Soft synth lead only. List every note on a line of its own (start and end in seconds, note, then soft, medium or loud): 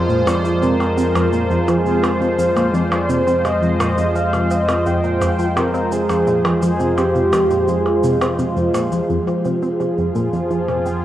0.00 0.29 C5 medium
0.27 0.64 D5 loud
0.62 1.70 A#4 loud
1.69 2.05 G#4 medium
2.03 2.76 C5 loud
2.74 3.11 D5 loud
3.09 3.44 C5 loud
3.45 4.17 D#5 loud
4.16 4.52 F5 loud
4.51 4.88 D#5 loud
4.86 5.59 G5 loud
5.57 5.94 A#4 loud
5.92 6.62 G#4 loud
6.63 6.99 G#4 medium
6.98 7.70 G4 loud
7.69 8.39 G#4 medium